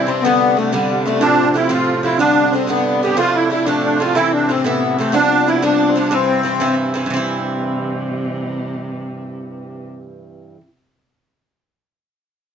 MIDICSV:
0, 0, Header, 1, 5, 480
1, 0, Start_track
1, 0, Key_signature, 0, "major"
1, 0, Tempo, 327332
1, 348, Time_signature, 6, 3, 24, 8
1, 18399, End_track
2, 0, Start_track
2, 0, Title_t, "Accordion"
2, 0, Program_c, 0, 21
2, 110, Note_on_c, 0, 60, 86
2, 328, Note_on_c, 0, 59, 120
2, 350, Note_off_c, 0, 60, 0
2, 837, Note_on_c, 0, 57, 88
2, 842, Note_off_c, 0, 59, 0
2, 1070, Note_on_c, 0, 55, 78
2, 1072, Note_off_c, 0, 57, 0
2, 1524, Note_off_c, 0, 55, 0
2, 1544, Note_on_c, 0, 57, 83
2, 1773, Note_on_c, 0, 62, 116
2, 1785, Note_off_c, 0, 57, 0
2, 2276, Note_on_c, 0, 64, 89
2, 2283, Note_off_c, 0, 62, 0
2, 2510, Note_off_c, 0, 64, 0
2, 2512, Note_on_c, 0, 65, 79
2, 2963, Note_off_c, 0, 65, 0
2, 2995, Note_on_c, 0, 64, 86
2, 3205, Note_off_c, 0, 64, 0
2, 3206, Note_on_c, 0, 62, 110
2, 3719, Note_off_c, 0, 62, 0
2, 3719, Note_on_c, 0, 60, 85
2, 3950, Note_off_c, 0, 60, 0
2, 3958, Note_on_c, 0, 59, 87
2, 4405, Note_off_c, 0, 59, 0
2, 4447, Note_on_c, 0, 67, 92
2, 4651, Note_off_c, 0, 67, 0
2, 4668, Note_on_c, 0, 65, 127
2, 4914, Note_on_c, 0, 64, 96
2, 4933, Note_off_c, 0, 65, 0
2, 5133, Note_off_c, 0, 64, 0
2, 5155, Note_on_c, 0, 64, 87
2, 5364, Note_off_c, 0, 64, 0
2, 5366, Note_on_c, 0, 62, 75
2, 5598, Note_off_c, 0, 62, 0
2, 5620, Note_on_c, 0, 62, 87
2, 5863, Note_on_c, 0, 65, 99
2, 5865, Note_off_c, 0, 62, 0
2, 6080, Note_on_c, 0, 64, 119
2, 6101, Note_off_c, 0, 65, 0
2, 6332, Note_off_c, 0, 64, 0
2, 6357, Note_on_c, 0, 62, 86
2, 6594, Note_off_c, 0, 62, 0
2, 6606, Note_on_c, 0, 60, 99
2, 6810, Note_off_c, 0, 60, 0
2, 6835, Note_on_c, 0, 59, 76
2, 7283, Note_off_c, 0, 59, 0
2, 7314, Note_on_c, 0, 57, 86
2, 7546, Note_off_c, 0, 57, 0
2, 7547, Note_on_c, 0, 62, 127
2, 8027, Note_on_c, 0, 64, 91
2, 8047, Note_off_c, 0, 62, 0
2, 8262, Note_off_c, 0, 64, 0
2, 8278, Note_on_c, 0, 62, 83
2, 8642, Note_on_c, 0, 60, 76
2, 8655, Note_off_c, 0, 62, 0
2, 8755, Note_off_c, 0, 60, 0
2, 8773, Note_on_c, 0, 62, 76
2, 8982, Note_on_c, 0, 60, 108
2, 8995, Note_off_c, 0, 62, 0
2, 9903, Note_off_c, 0, 60, 0
2, 18399, End_track
3, 0, Start_track
3, 0, Title_t, "Fiddle"
3, 0, Program_c, 1, 110
3, 118, Note_on_c, 1, 60, 78
3, 347, Note_on_c, 1, 59, 78
3, 369, Note_off_c, 1, 60, 0
3, 834, Note_on_c, 1, 57, 64
3, 855, Note_off_c, 1, 59, 0
3, 1056, Note_on_c, 1, 55, 77
3, 1078, Note_off_c, 1, 57, 0
3, 1566, Note_on_c, 1, 57, 78
3, 1588, Note_off_c, 1, 55, 0
3, 1777, Note_off_c, 1, 57, 0
3, 1786, Note_on_c, 1, 62, 90
3, 2241, Note_off_c, 1, 62, 0
3, 2265, Note_on_c, 1, 64, 74
3, 2499, Note_on_c, 1, 65, 85
3, 2521, Note_off_c, 1, 64, 0
3, 2991, Note_off_c, 1, 65, 0
3, 2998, Note_on_c, 1, 64, 69
3, 3208, Note_off_c, 1, 64, 0
3, 3224, Note_on_c, 1, 62, 81
3, 3694, Note_on_c, 1, 60, 75
3, 3716, Note_off_c, 1, 62, 0
3, 3930, Note_off_c, 1, 60, 0
3, 3940, Note_on_c, 1, 59, 83
3, 4660, Note_on_c, 1, 65, 79
3, 4682, Note_off_c, 1, 59, 0
3, 4896, Note_on_c, 1, 64, 89
3, 4918, Note_off_c, 1, 65, 0
3, 5120, Note_off_c, 1, 64, 0
3, 5129, Note_on_c, 1, 64, 69
3, 5357, Note_on_c, 1, 62, 78
3, 5379, Note_off_c, 1, 64, 0
3, 5606, Note_off_c, 1, 62, 0
3, 5615, Note_on_c, 1, 62, 75
3, 5815, Note_on_c, 1, 65, 77
3, 5837, Note_off_c, 1, 62, 0
3, 6070, Note_on_c, 1, 64, 89
3, 6092, Note_off_c, 1, 65, 0
3, 6337, Note_on_c, 1, 62, 85
3, 6359, Note_off_c, 1, 64, 0
3, 6571, Note_off_c, 1, 62, 0
3, 6580, Note_on_c, 1, 60, 67
3, 6815, Note_on_c, 1, 59, 75
3, 6837, Note_off_c, 1, 60, 0
3, 7311, Note_on_c, 1, 57, 71
3, 7333, Note_off_c, 1, 59, 0
3, 7517, Note_on_c, 1, 62, 84
3, 7539, Note_off_c, 1, 57, 0
3, 8242, Note_off_c, 1, 62, 0
3, 8251, Note_on_c, 1, 62, 83
3, 8645, Note_on_c, 1, 60, 85
3, 8667, Note_off_c, 1, 62, 0
3, 8976, Note_off_c, 1, 60, 0
3, 8984, Note_on_c, 1, 60, 70
3, 9905, Note_off_c, 1, 60, 0
3, 18399, End_track
4, 0, Start_track
4, 0, Title_t, "Bouzouki"
4, 0, Program_c, 2, 25
4, 98, Note_on_c, 2, 43, 59
4, 118, Note_on_c, 2, 52, 58
4, 119, Note_on_c, 2, 60, 56
4, 132, Note_on_c, 2, 62, 52
4, 337, Note_off_c, 2, 43, 0
4, 347, Note_off_c, 2, 52, 0
4, 347, Note_off_c, 2, 60, 0
4, 354, Note_off_c, 2, 62, 0
4, 359, Note_on_c, 2, 43, 74
4, 364, Note_on_c, 2, 50, 86
4, 378, Note_on_c, 2, 62, 80
4, 383, Note_on_c, 2, 59, 75
4, 815, Note_off_c, 2, 43, 0
4, 820, Note_off_c, 2, 50, 0
4, 832, Note_on_c, 2, 43, 50
4, 838, Note_on_c, 2, 50, 54
4, 839, Note_off_c, 2, 62, 0
4, 840, Note_off_c, 2, 59, 0
4, 856, Note_on_c, 2, 62, 53
4, 857, Note_on_c, 2, 59, 49
4, 1045, Note_off_c, 2, 43, 0
4, 1051, Note_off_c, 2, 50, 0
4, 1063, Note_on_c, 2, 43, 70
4, 1064, Note_off_c, 2, 62, 0
4, 1065, Note_off_c, 2, 59, 0
4, 1068, Note_on_c, 2, 50, 85
4, 1082, Note_on_c, 2, 62, 85
4, 1083, Note_on_c, 2, 59, 81
4, 1530, Note_off_c, 2, 43, 0
4, 1545, Note_off_c, 2, 50, 0
4, 1547, Note_on_c, 2, 43, 50
4, 1557, Note_off_c, 2, 59, 0
4, 1563, Note_off_c, 2, 62, 0
4, 1563, Note_on_c, 2, 50, 58
4, 1575, Note_on_c, 2, 59, 64
4, 1580, Note_on_c, 2, 62, 72
4, 1766, Note_off_c, 2, 43, 0
4, 1767, Note_off_c, 2, 50, 0
4, 1772, Note_on_c, 2, 45, 82
4, 1773, Note_on_c, 2, 53, 75
4, 1783, Note_off_c, 2, 59, 0
4, 1789, Note_on_c, 2, 60, 80
4, 1794, Note_off_c, 2, 62, 0
4, 1800, Note_on_c, 2, 65, 89
4, 2242, Note_off_c, 2, 45, 0
4, 2259, Note_on_c, 2, 45, 59
4, 2262, Note_off_c, 2, 53, 0
4, 2270, Note_off_c, 2, 60, 0
4, 2280, Note_on_c, 2, 53, 61
4, 2282, Note_off_c, 2, 65, 0
4, 2288, Note_on_c, 2, 60, 58
4, 2298, Note_on_c, 2, 65, 61
4, 2463, Note_off_c, 2, 45, 0
4, 2470, Note_off_c, 2, 53, 0
4, 2480, Note_on_c, 2, 45, 79
4, 2484, Note_off_c, 2, 60, 0
4, 2485, Note_off_c, 2, 65, 0
4, 2488, Note_on_c, 2, 53, 77
4, 2501, Note_on_c, 2, 60, 65
4, 2503, Note_on_c, 2, 65, 82
4, 2961, Note_off_c, 2, 45, 0
4, 2976, Note_off_c, 2, 53, 0
4, 2979, Note_on_c, 2, 45, 55
4, 2985, Note_off_c, 2, 60, 0
4, 2993, Note_off_c, 2, 65, 0
4, 2994, Note_on_c, 2, 53, 53
4, 3002, Note_on_c, 2, 60, 57
4, 3017, Note_on_c, 2, 65, 66
4, 3208, Note_off_c, 2, 45, 0
4, 3214, Note_on_c, 2, 43, 73
4, 3221, Note_off_c, 2, 53, 0
4, 3221, Note_off_c, 2, 60, 0
4, 3227, Note_on_c, 2, 59, 87
4, 3231, Note_on_c, 2, 50, 81
4, 3232, Note_off_c, 2, 65, 0
4, 3238, Note_on_c, 2, 62, 77
4, 3696, Note_off_c, 2, 43, 0
4, 3706, Note_off_c, 2, 50, 0
4, 3713, Note_on_c, 2, 43, 54
4, 3714, Note_off_c, 2, 59, 0
4, 3719, Note_off_c, 2, 62, 0
4, 3724, Note_on_c, 2, 50, 47
4, 3733, Note_on_c, 2, 59, 59
4, 3746, Note_on_c, 2, 62, 62
4, 3901, Note_off_c, 2, 43, 0
4, 3915, Note_off_c, 2, 50, 0
4, 3919, Note_on_c, 2, 43, 66
4, 3928, Note_off_c, 2, 59, 0
4, 3933, Note_on_c, 2, 50, 65
4, 3940, Note_off_c, 2, 62, 0
4, 3946, Note_on_c, 2, 59, 68
4, 3957, Note_on_c, 2, 62, 79
4, 4420, Note_off_c, 2, 43, 0
4, 4427, Note_off_c, 2, 50, 0
4, 4433, Note_off_c, 2, 59, 0
4, 4439, Note_off_c, 2, 62, 0
4, 4440, Note_on_c, 2, 43, 50
4, 4443, Note_on_c, 2, 50, 57
4, 4453, Note_on_c, 2, 59, 56
4, 4469, Note_on_c, 2, 62, 65
4, 4638, Note_off_c, 2, 62, 0
4, 4639, Note_off_c, 2, 50, 0
4, 4640, Note_off_c, 2, 43, 0
4, 4645, Note_on_c, 2, 53, 73
4, 4646, Note_on_c, 2, 45, 76
4, 4650, Note_off_c, 2, 59, 0
4, 4656, Note_on_c, 2, 57, 85
4, 4656, Note_on_c, 2, 62, 86
4, 5114, Note_off_c, 2, 45, 0
4, 5121, Note_off_c, 2, 53, 0
4, 5132, Note_on_c, 2, 45, 50
4, 5138, Note_on_c, 2, 53, 47
4, 5139, Note_off_c, 2, 57, 0
4, 5148, Note_off_c, 2, 62, 0
4, 5156, Note_on_c, 2, 57, 56
4, 5167, Note_on_c, 2, 62, 53
4, 5357, Note_off_c, 2, 53, 0
4, 5358, Note_off_c, 2, 45, 0
4, 5373, Note_off_c, 2, 57, 0
4, 5374, Note_on_c, 2, 53, 78
4, 5376, Note_on_c, 2, 45, 77
4, 5378, Note_off_c, 2, 62, 0
4, 5391, Note_on_c, 2, 57, 80
4, 5395, Note_on_c, 2, 62, 72
4, 5849, Note_off_c, 2, 45, 0
4, 5861, Note_off_c, 2, 53, 0
4, 5867, Note_on_c, 2, 45, 61
4, 5875, Note_off_c, 2, 57, 0
4, 5877, Note_off_c, 2, 62, 0
4, 5879, Note_on_c, 2, 53, 50
4, 5892, Note_on_c, 2, 57, 61
4, 5893, Note_on_c, 2, 62, 57
4, 6070, Note_off_c, 2, 45, 0
4, 6088, Note_on_c, 2, 45, 78
4, 6097, Note_off_c, 2, 53, 0
4, 6103, Note_on_c, 2, 52, 80
4, 6108, Note_off_c, 2, 57, 0
4, 6109, Note_off_c, 2, 62, 0
4, 6116, Note_on_c, 2, 60, 84
4, 6125, Note_on_c, 2, 64, 76
4, 6565, Note_off_c, 2, 45, 0
4, 6577, Note_off_c, 2, 52, 0
4, 6583, Note_on_c, 2, 45, 57
4, 6586, Note_off_c, 2, 60, 0
4, 6593, Note_off_c, 2, 64, 0
4, 6595, Note_on_c, 2, 52, 50
4, 6604, Note_on_c, 2, 60, 50
4, 6610, Note_on_c, 2, 64, 65
4, 6791, Note_off_c, 2, 45, 0
4, 6809, Note_off_c, 2, 52, 0
4, 6809, Note_on_c, 2, 45, 74
4, 6823, Note_off_c, 2, 64, 0
4, 6824, Note_off_c, 2, 60, 0
4, 6827, Note_on_c, 2, 52, 74
4, 6840, Note_on_c, 2, 64, 90
4, 7293, Note_off_c, 2, 45, 0
4, 7311, Note_on_c, 2, 45, 56
4, 7313, Note_off_c, 2, 52, 0
4, 7320, Note_off_c, 2, 64, 0
4, 7331, Note_on_c, 2, 52, 57
4, 7343, Note_on_c, 2, 60, 68
4, 7345, Note_on_c, 2, 64, 62
4, 7504, Note_off_c, 2, 45, 0
4, 7510, Note_on_c, 2, 43, 69
4, 7518, Note_off_c, 2, 52, 0
4, 7519, Note_off_c, 2, 60, 0
4, 7524, Note_on_c, 2, 53, 78
4, 7525, Note_on_c, 2, 59, 73
4, 7533, Note_off_c, 2, 64, 0
4, 7538, Note_on_c, 2, 62, 88
4, 7998, Note_off_c, 2, 43, 0
4, 8015, Note_on_c, 2, 43, 56
4, 8018, Note_off_c, 2, 53, 0
4, 8022, Note_off_c, 2, 59, 0
4, 8029, Note_off_c, 2, 62, 0
4, 8035, Note_on_c, 2, 53, 53
4, 8041, Note_on_c, 2, 59, 62
4, 8055, Note_on_c, 2, 62, 62
4, 8230, Note_off_c, 2, 43, 0
4, 8239, Note_off_c, 2, 53, 0
4, 8247, Note_off_c, 2, 62, 0
4, 8247, Note_on_c, 2, 43, 81
4, 8249, Note_off_c, 2, 59, 0
4, 8257, Note_on_c, 2, 53, 76
4, 8265, Note_on_c, 2, 62, 81
4, 8267, Note_on_c, 2, 59, 63
4, 8716, Note_off_c, 2, 43, 0
4, 8731, Note_off_c, 2, 53, 0
4, 8734, Note_on_c, 2, 43, 62
4, 8739, Note_off_c, 2, 59, 0
4, 8747, Note_off_c, 2, 62, 0
4, 8749, Note_on_c, 2, 53, 54
4, 8756, Note_on_c, 2, 59, 63
4, 8764, Note_on_c, 2, 62, 57
4, 8940, Note_off_c, 2, 43, 0
4, 8958, Note_on_c, 2, 43, 88
4, 8962, Note_off_c, 2, 53, 0
4, 8962, Note_off_c, 2, 59, 0
4, 8968, Note_on_c, 2, 52, 81
4, 8968, Note_on_c, 2, 60, 73
4, 8976, Note_off_c, 2, 62, 0
4, 8982, Note_on_c, 2, 64, 86
4, 9416, Note_off_c, 2, 43, 0
4, 9434, Note_on_c, 2, 43, 57
4, 9447, Note_off_c, 2, 52, 0
4, 9451, Note_off_c, 2, 60, 0
4, 9453, Note_on_c, 2, 52, 60
4, 9456, Note_on_c, 2, 60, 61
4, 9467, Note_off_c, 2, 64, 0
4, 9473, Note_on_c, 2, 64, 65
4, 9660, Note_off_c, 2, 43, 0
4, 9669, Note_off_c, 2, 52, 0
4, 9678, Note_on_c, 2, 43, 79
4, 9680, Note_off_c, 2, 64, 0
4, 9681, Note_off_c, 2, 60, 0
4, 9687, Note_on_c, 2, 52, 84
4, 9698, Note_on_c, 2, 64, 79
4, 9699, Note_on_c, 2, 60, 74
4, 10156, Note_off_c, 2, 43, 0
4, 10174, Note_on_c, 2, 43, 66
4, 10180, Note_off_c, 2, 52, 0
4, 10186, Note_on_c, 2, 52, 61
4, 10191, Note_off_c, 2, 60, 0
4, 10195, Note_off_c, 2, 64, 0
4, 10197, Note_on_c, 2, 60, 62
4, 10201, Note_on_c, 2, 64, 60
4, 10338, Note_off_c, 2, 43, 0
4, 10356, Note_on_c, 2, 43, 75
4, 10399, Note_off_c, 2, 52, 0
4, 10416, Note_on_c, 2, 52, 83
4, 10421, Note_off_c, 2, 60, 0
4, 10423, Note_off_c, 2, 64, 0
4, 10465, Note_on_c, 2, 60, 88
4, 10507, Note_on_c, 2, 64, 84
4, 15488, Note_off_c, 2, 43, 0
4, 15549, Note_off_c, 2, 52, 0
4, 15597, Note_off_c, 2, 60, 0
4, 15640, Note_off_c, 2, 64, 0
4, 18399, End_track
5, 0, Start_track
5, 0, Title_t, "Cello"
5, 0, Program_c, 3, 42
5, 0, Note_on_c, 3, 48, 74
5, 4650, Note_off_c, 3, 48, 0
5, 4658, Note_on_c, 3, 48, 68
5, 10412, Note_off_c, 3, 48, 0
5, 10421, Note_on_c, 3, 48, 67
5, 14469, Note_off_c, 3, 48, 0
5, 18399, End_track
0, 0, End_of_file